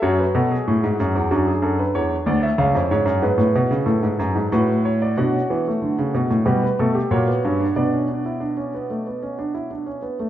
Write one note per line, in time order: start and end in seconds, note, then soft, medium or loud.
0.02 0.23 F#2 medium
0.02 1.27 F#4 medium
0.02 0.19 C#5 medium
0.19 0.35 B4 medium
0.35 0.55 B2 medium
0.35 0.51 A4 medium
0.51 1.29 G#4 medium
0.68 0.83 A2 medium
0.83 0.99 G#2 medium
1.00 1.15 F#2 medium
1.15 1.31 E2 medium
1.31 1.51 F#2 medium
1.31 2.55 D4 medium
1.31 1.47 F#4 medium
1.47 1.63 G#4 medium
1.62 1.82 F#2 medium
1.62 1.78 A4 medium
1.79 1.95 B4 medium
1.95 2.15 E2 medium
1.95 2.15 C#5 medium
2.26 2.47 D2 medium
2.26 2.43 D5 medium
2.43 2.59 E5 medium
2.58 2.74 C#2 medium
2.58 3.21 C#4 medium
2.58 2.79 F5 medium
2.75 2.91 F2 medium
2.91 3.07 G#2 medium
2.91 3.11 C#5 medium
3.05 3.22 F#2 medium
3.22 3.38 G#2 medium
3.22 4.48 B3 medium
3.22 3.85 B4 medium
3.38 3.54 A2 medium
3.55 3.71 B2 medium
3.71 3.87 C#3 medium
3.86 4.02 A2 medium
3.86 4.49 A4 medium
4.03 4.19 G#2 medium
4.19 4.35 F#2 medium
4.35 4.52 G#2 medium
4.52 5.15 A2 medium
4.52 5.15 F#4 medium
4.52 4.72 B4 medium
4.85 5.01 C#5 medium
5.02 5.17 D5 medium
5.17 5.38 B2 medium
5.17 5.33 D4 medium
5.17 6.42 F#4 medium
5.17 6.42 F#5 medium
5.33 5.49 C#4 soft
5.50 5.70 E3 medium
5.50 5.65 B3 medium
5.68 6.44 A3 medium
5.82 5.97 D3 medium
5.99 6.14 C#3 medium
6.14 6.30 B2 medium
6.30 6.46 A2 medium
6.45 6.66 B2 medium
6.45 6.65 G3 medium
6.45 6.61 G4 medium
6.45 6.62 B4 medium
6.63 6.78 B4 medium
6.79 6.99 B2 medium
6.79 6.99 A3 medium
6.79 6.94 A4 medium
6.95 7.10 G4 medium
7.11 7.31 A#2 medium
7.11 7.26 A#3 medium
7.11 7.73 F#4 medium
7.11 7.73 C#5 medium
7.27 7.42 B3 medium
7.44 7.64 G2 medium
7.44 7.59 C#4 medium
7.60 7.75 D4 medium
7.76 10.00 B2 medium
7.76 7.91 B3 medium
7.76 8.07 D4 medium
7.76 10.00 D5 medium
7.93 8.08 C#4 medium
8.08 8.24 D4 medium
8.25 8.40 E4 soft
8.40 8.56 D4 medium
8.57 8.72 C#4 medium
8.74 8.89 B3 medium
8.90 9.05 A3 soft
9.07 9.22 B3 soft
9.22 9.38 C#4 soft
9.39 9.54 D4 medium
9.54 9.70 E4 soft
9.71 9.86 D4 soft
9.86 10.02 C#4 medium
10.02 10.18 B3 soft
10.20 10.30 A3 medium